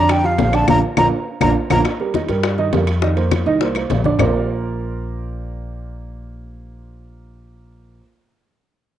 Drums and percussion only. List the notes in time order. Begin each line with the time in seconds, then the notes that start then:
0.09 high bongo, high conga, high timbale, claves
0.24 high bongo, high conga
0.38 high bongo, low bongo, high conga, high timbale, low timbale
0.53 high bongo, high conga, high timbale, claves
0.68 high bongo, high conga, high timbale, claves
0.97 high bongo, high conga, high timbale, claves
1.41 high bongo, high conga, high timbale, claves
1.70 high bongo, high conga, high timbale, claves
1.85 high bongo, high conga, high timbale, claves
2.00 high conga
2.14 high bongo, high conga, high timbale, low timbale
2.29 high bongo, high conga, high timbale
2.43 high bongo, high conga, high timbale, claves
2.58 high bongo, high conga
2.73 high bongo, low bongo, high conga, high timbale, low timbale
2.87 high bongo, high timbale, claves
3.02 high bongo, high conga
3.17 high conga, high timbale
3.31 high bongo, high conga, high timbale, low timbale, claves
3.46 high bongo, high conga
3.61 high bongo, high conga, high timbale
3.75 high bongo, high conga, high timbale, claves
3.90 high bongo, low bongo, high conga, high timbale, low timbale
4.04 high bongo, high conga
4.19 low bongo, low conga, low timbale, claves